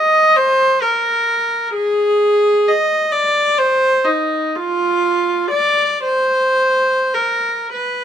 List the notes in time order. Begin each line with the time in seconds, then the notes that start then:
Already playing: D#5
0.36 C5
0.82 A#4
1.74 G#4
2.69 D#5
3.12 D5
3.59 C5
4.05 D#4
4.56 F4
5.51 D5
6.04 C5
7.14 A#4
7.73 B4